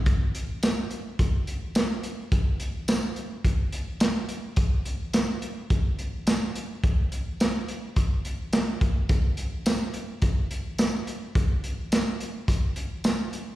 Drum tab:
HH |xxxxxxxx|xxxxxxxx|xxxxxxxx|xxxxxxxx|
TB |--x---x-|--x---x-|--x---x-|--x---x-|
SD |--o---o-|--o---o-|--o---o-|--o---o-|
BD |o---o---|o---o---|o---o---|o---o--o|

HH |xxxxxxxx|xxxxxxxx|
TB |--x---x-|--x---x-|
SD |--o---o-|--o---o-|
BD |o---o---|o---o---|